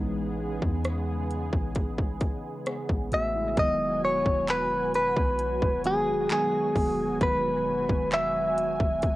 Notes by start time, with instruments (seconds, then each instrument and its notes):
Already playing: 808-style bass A1, analog synth pad C#3 G#3 B3 G#4, tine electric piano E3 G#3 B3 C#4 D#4
0.62 808-style bass E2, kick
0.85 cross-stick, closed hi-hat
1.31 closed hi-hat
1.53 808-style bass A1, kick
1.75 kick, closed hi-hat
1.98 kick
2.21 kick, closed hi-hat
2.66 tine electric piano B3 G#4, cross-stick, closed hi-hat
2.89 808-style bass A1, kick
3.12 808-style bass A1, tine electric piano A3 F#4, clean electric guitar E5, closed hi-hat
3.36 tine electric piano G#3 E4
3.57 808-style bass E1, analog synth pad B2 F#3 F#4 G#5, tine electric piano D#3 F#3 G#3 B3, clean electric guitar D#5, kick, closed hi-hat
4.05 clean electric guitar C#5
4.26 808-style bass E1, kick
4.48 clean electric guitar B4, clap, closed hi-hat
4.94 clean electric guitar B4, closed hi-hat
5.16 808-style bass B1, kick
5.39 closed hi-hat
5.62 808-style bass E1, kick
5.84 tine electric piano D#3 F#3 G#3 B3, clean electric guitar G#4, closed hi-hat
6.30 tine electric piano D#3 F#3 G#3 B3, clean electric guitar G#4, clap, closed hi-hat
6.76 808-style bass E1, kick, open hi-hat
7.20 808-style bass E1, tine electric piano D#3 F#3 G#3 B3, clean electric guitar B4, kick, closed hi-hat
7.89 808-style bass E1, kick
8.12 clean electric guitar E5, clap, closed hi-hat
8.58 closed hi-hat
8.80 808-style bass E1, kick
9.02 kick, closed hi-hat